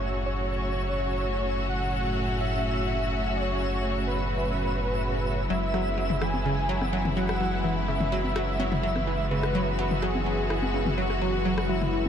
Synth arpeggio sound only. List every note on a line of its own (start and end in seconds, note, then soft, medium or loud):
5.50 5.55 F#3 loud
5.74 5.82 F#3 loud
5.98 6.06 F#3 medium
6.22 6.29 E3 medium
6.45 6.50 C#3 medium
6.69 6.77 F#3 loud
6.93 6.98 F#3 loud
7.17 7.25 F#3 loud
7.41 7.49 F#3 medium
7.64 7.72 E3 medium
7.88 7.93 C#3 medium
8.12 8.20 F#3 loud
8.36 8.41 F#3 loud
8.60 8.68 F#3 loud
8.83 8.91 F#3 medium
9.07 9.15 E3 medium
9.31 9.36 C#3 medium
9.55 9.63 F#3 loud
9.79 9.83 F#3 loud
10.02 10.10 F#3 loud
10.26 10.34 F#3 medium
10.50 10.58 E3 medium
10.74 10.79 C#3 medium
10.98 11.06 F#3 loud
11.22 11.26 F#3 loud
11.45 11.53 F#3 loud
11.69 11.77 F#3 medium
11.93 12.01 E3 medium